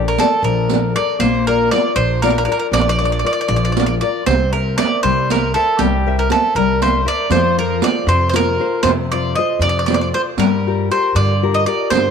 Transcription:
Already playing: upright bass A#1, nylon-string guitar F3 A4 A#4 D5
0.08 mandolin A#4
0.18 mandolin A4, nylon-string guitar A4 A#4 D5, riq
0.43 upright bass A#1, nylon-string guitar F3, mandolin A#4, riq
0.69 nylon-string guitar A4 A#4 D5, riq
0.96 nylon-string guitar A4 A#4 D5, mandolin D5
1.19 upright bass A#1, nylon-string guitar A#3, mandolin C5, riq
1.47 nylon-string guitar F4 A#4 D5, mandolin A#4
1.71 nylon-string guitar F4 A#4 D5, mandolin D5, riq
1.96 upright bass A#1, nylon-string guitar F3, mandolin C5, riq
2.22 nylon-string guitar F4 A#4 D5, mandolin A#4, riq
2.30 mandolin A#4
2.38 mandolin A#4
2.45 nylon-string guitar F4 A#4 D5, mandolin A#4
2.52 mandolin A#4
2.59 mandolin A#4
2.72 upright bass A#1, nylon-string guitar F3, mandolin D5, riq
2.81 mandolin D5
2.89 mandolin D5
2.99 nylon-string guitar F4 A#4 D5, mandolin D5, riq
3.05 mandolin D5
3.12 mandolin D5
3.19 mandolin D5
3.24 nylon-string guitar F4 A#4 D5, mandolin D5
3.33 mandolin D5
3.41 mandolin D5
3.48 upright bass A#1, nylon-string guitar F3, mandolin D5
3.56 mandolin D5
3.65 mandolin D5
3.72 mandolin D5
3.77 nylon-string guitar F4 A#4 D5, mandolin D5, riq
3.86 mandolin D5
4.01 nylon-string guitar F4 A#4 D5, mandolin D5
4.26 upright bass C2, nylon-string guitar C4, mandolin C5, riq
4.53 mandolin A#4, nylon-string guitar A#4 C5 E5
4.78 nylon-string guitar A#4 C5 E5, mandolin D5, riq
5.03 upright bass C2, nylon-string guitar G3, mandolin C5, riq
5.30 nylon-string guitar A#4 C5 E5, mandolin A#4, riq
5.54 mandolin A4, nylon-string guitar A#4 C5 E5
5.79 upright bass C2, nylon-string guitar G3, mandolin G4, riq
6.06 nylon-string guitar A#4 C5 E5
6.19 mandolin A#4
6.30 mandolin A4, nylon-string guitar A#4 C5 E5, riq
6.55 upright bass C2, nylon-string guitar G3, mandolin A#4, riq
6.82 nylon-string guitar A#4 C5 E5, mandolin C5, riq
7.05 nylon-string guitar A#4 C5 E5, mandolin D5
7.30 upright bass F2, nylon-string guitar F3, mandolin C5, riq
7.58 nylon-string guitar F4 A4 C5, mandolin A#4
7.82 nylon-string guitar F4 A4 C5, mandolin D5, riq
8.07 upright bass F2, nylon-string guitar C3, mandolin C5, riq
8.29 mandolin C5
8.34 nylon-string guitar F4 C5, mandolin A#4, riq
8.60 nylon-string guitar F4 A4 C5
8.83 upright bass F2, nylon-string guitar C3, mandolin C5, riq
9.12 nylon-string guitar F4 A4 C5, mandolin D5
9.36 nylon-string guitar F4 A4 C5, mandolin D#5
9.59 upright bass F2, nylon-string guitar C3, mandolin D5, riq
9.69 mandolin D5
9.79 mandolin D5
9.86 nylon-string guitar F4 A4 C5, mandolin D5, riq
9.94 mandolin D5
10.01 mandolin D5
10.14 nylon-string guitar F4 A4 C5, mandolin C5
10.37 upright bass G2, nylon-string guitar G3, mandolin A#4, riq
10.67 nylon-string guitar F4 G4 A#4
10.91 nylon-string guitar F4 G4 A#4, mandolin C5
11.15 upright bass G2, nylon-string guitar D3, mandolin D5, riq
11.43 nylon-string guitar F4 G4 A#4
11.54 mandolin D#5
11.66 nylon-string guitar F4 G4 A#4, mandolin D5
11.90 upright bass G2, nylon-string guitar D3, mandolin C5, riq

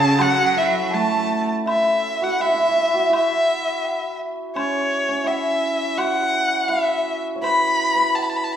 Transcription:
Already playing: cello C#3, hammered dulcimer C#4 F#4 A4, dizi A5, erhu A5
0.18 cello F#3, hammered dulcimer F#4, dizi F#5, erhu F#5, high woodblock
0.57 hammered dulcimer E4, erhu E5
0.91 cello A3, hammered dulcimer A4, dizi A5, erhu A5
1.66 hammered dulcimer E4, erhu E5, high woodblock
2.22 hammered dulcimer F#4, erhu F#5
2.40 hammered dulcimer E4, erhu E5, low woodblock
2.49 hammered dulcimer E4
2.54 hammered dulcimer E4
2.60 hammered dulcimer E4
2.68 hammered dulcimer E4
2.76 hammered dulcimer E4
2.94 hammered dulcimer F#4
3.10 hammered dulcimer E4, high woodblock
3.16 erhu E5
3.84 low woodblock
4.55 hammered dulcimer C#4, erhu C#5, high woodblock
5.09 hammered dulcimer C#4
5.24 hammered dulcimer E4, erhu E5, low woodblock
5.97 hammered dulcimer F#4, erhu F#5, high woodblock
6.68 hammered dulcimer E4, erhu E5
7.36 hammered dulcimer C#5
7.42 hammered dulcimer B4, erhu B5, dizi B5, high woodblock
7.95 hammered dulcimer B4, dizi B5
8.15 erhu A5, low woodblock
8.22 erhu B5
8.29 erhu A5
8.36 erhu B5
8.44 erhu A5
8.53 erhu B5

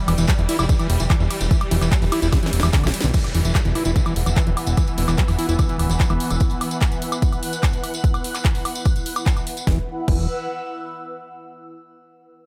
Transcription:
Already playing: synth drone E3 G3
0.08 analog synth bass E1, acid bass E3, open hi-hat, ride, high woodblock
0.18 analog synth bass E1, acid bass E3, closed hi-hat, tambourine
0.27 acid bass F#3, kick, clap, closed hi-hat, tambourine, high woodblock
0.39 analog synth bass E1, acid bass E3, closed hi-hat, tambourine
0.49 acid bass E4, open hi-hat, ride
0.59 analog synth bass E1, acid bass E4, closed hi-hat, tambourine, high woodblock
0.69 acid bass D3, kick, closed hi-hat, tambourine
0.79 acid bass E3, closed hi-hat, tambourine, high woodblock
0.90 analog synth bass E1, open hi-hat, ride
1.00 analog synth bass E1, acid bass E3, closed hi-hat, tambourine
1.10 acid bass E3, kick, clap, closed hi-hat, tambourine, high woodblock
1.20 analog synth bass E1, acid bass E3, tambourine
1.30 open hi-hat, ride, high woodblock
1.41 analog synth bass E1, closed hi-hat, tambourine
1.51 acid bass E3, kick, closed hi-hat, tambourine
1.61 closed hi-hat, tambourine, high woodblock
1.71 analog synth bass E1, acid bass E3, open hi-hat, ride
1.81 analog synth bass E1, acid bass E3, clap, closed hi-hat, tambourine, high woodblock
1.92 acid bass F#3, kick, clap, closed hi-hat, tambourine
2.02 analog synth bass E1, acid bass E3, open hi-hat, tambourine
2.12 acid bass E4, open hi-hat, ride, high woodblock
2.22 analog synth bass E1, acid bass E4, closed hi-hat, tambourine
2.32 acid bass D3, kick, snare, closed hi-hat, tambourine, high woodblock
2.43 acid bass E3, snare, closed hi-hat, tambourine
2.53 analog synth bass E1, open hi-hat, ride
2.60 analog synth bass E1, acid bass E3, snare, open hi-hat, tambourine, high woodblock
2.73 acid bass D3, kick, snare, clap, closed hi-hat, tambourine
2.84 analog synth bass B1, acid bass F#3, snare, closed hi-hat, tambourine, high woodblock
2.94 open hi-hat, ride
3.01 analog synth bass B1, acid bass D3, snare, closed hi-hat, tambourine
3.14 acid bass E3, synth drone E3 B3, analog synth pad E4, kick, closed hi-hat, crash, tambourine, downlifter
3.24 closed hi-hat, tambourine, high woodblock
3.35 analog synth bass E1, acid bass E3, open hi-hat
3.40 analog synth pad B4
3.45 analog synth bass E1, acid bass E3, closed hi-hat, tambourine
3.55 acid bass F#3, kick, clap, closed hi-hat, tambourine, high woodblock
3.65 analog synth bass E1, acid bass E3, closed hi-hat, tambourine
3.75 acid bass E4, open hi-hat, high woodblock
3.79 analog synth pad F#5
3.85 analog synth bass E1, acid bass E4, closed hi-hat, tambourine
3.96 acid bass D3, analog synth pad E6, kick, closed hi-hat, tambourine
4.06 acid bass E3, closed hi-hat, tambourine, high woodblock
4.16 analog synth bass E1, open hi-hat
4.26 analog synth bass E1, acid bass E3, closed hi-hat, tambourine, high woodblock
4.37 acid bass E3, kick, clap, closed hi-hat
4.47 analog synth bass E1, acid bass E3, closed hi-hat, tambourine
4.57 open hi-hat, high woodblock
4.67 analog synth bass E1, closed hi-hat, tambourine
4.77 acid bass E3, kick, closed hi-hat, tambourine, high woodblock
4.88 closed hi-hat, tambourine
4.98 analog synth bass E1, acid bass E3, open hi-hat
5.08 analog synth bass E1, acid bass E3, clap, closed hi-hat, tambourine, high woodblock
5.18 acid bass F#3, kick, clap, closed hi-hat, tambourine
5.28 analog synth bass E1, acid bass E3, open hi-hat, tambourine, high woodblock
5.39 acid bass E4, open hi-hat
5.49 analog synth bass E1, acid bass E4, closed hi-hat, tambourine
5.59 acid bass D3, kick, closed hi-hat, tambourine, high woodblock
5.69 acid bass E3, closed hi-hat, tambourine
5.79 analog synth bass D1, open hi-hat, high woodblock
5.90 analog synth bass E1, acid bass E3, closed hi-hat, tambourine
6.00 acid bass E3, kick, clap, closed hi-hat, tambourine
6.10 analog synth bass E1, acid bass E3, closed hi-hat, tambourine, high woodblock
6.20 open hi-hat
6.30 analog synth bass E1, closed hi-hat, tambourine, high woodblock
6.40 kick, closed hi-hat, tambourine
6.50 closed hi-hat, tambourine
6.61 open hi-hat, high woodblock
6.71 closed hi-hat, tambourine
6.81 kick, clap, closed hi-hat, tambourine, high woodblock
6.90 analog synth pad F#6, closed hi-hat, tambourine
7.02 open hi-hat
7.12 closed hi-hat, tambourine, high woodblock
7.22 kick, closed hi-hat, tambourine
7.33 closed hi-hat, tambourine, high woodblock
7.43 open hi-hat
7.53 closed hi-hat, tambourine
7.63 kick, clap, closed hi-hat, tambourine, high woodblock
7.73 closed hi-hat, tambourine
7.84 open hi-hat, high woodblock
7.94 closed hi-hat, tambourine
8.04 kick, closed hi-hat, tambourine
8.14 closed hi-hat, tambourine, high woodblock
8.24 open hi-hat
8.35 clap, closed hi-hat, tambourine, high woodblock
8.45 kick, clap, closed hi-hat
8.55 open hi-hat, tambourine
8.65 open hi-hat, high woodblock
8.75 closed hi-hat, tambourine
8.85 kick, closed hi-hat, tambourine, high woodblock
8.96 closed hi-hat, tambourine
9.06 open hi-hat
9.16 closed hi-hat, tambourine, high woodblock
9.26 kick, clap, closed hi-hat, tambourine
9.37 closed hi-hat, tambourine, high woodblock
9.47 open hi-hat
9.57 closed hi-hat, tambourine
9.67 analog synth bass E1, acid bass E3, analog synth pad E4, kick, snare
9.73 analog synth pad B4
9.79 analog synth pad F#5
9.86 analog synth pad E6
10.08 analog synth bass E1, acid bass E3, kick, crash

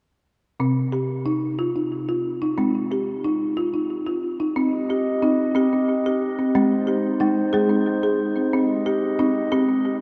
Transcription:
0.60 marimba C3 C4
0.92 marimba G4
1.26 marimba D#4
1.59 marimba F4
1.76 marimba D#4
2.09 marimba F4
2.42 marimba D#4
2.58 marimba G#3 C4
2.92 marimba G4
3.24 marimba D#4
3.57 marimba F4
3.74 marimba D#4
4.07 marimba F4
4.40 marimba D#4
4.55 glass harmonica C4 G4 D#5, marimba C4
4.90 marimba G4
5.22 marimba C4 D#4
5.55 marimba C4 G4
5.73 marimba C4
6.06 marimba G4
6.39 marimba C4
6.53 glass harmonica G#3 D#4 C5, marimba G#3 C4
6.87 marimba G4
7.20 marimba G#3 D#4
7.53 marimba G#3 G#4
7.69 marimba C4
8.03 marimba G#4
8.36 marimba C4
8.52 glass harmonica C4 G4 D#5, marimba C4
8.86 marimba G4
9.19 marimba C4 D#4
9.52 marimba C4 G4
9.69 marimba C4

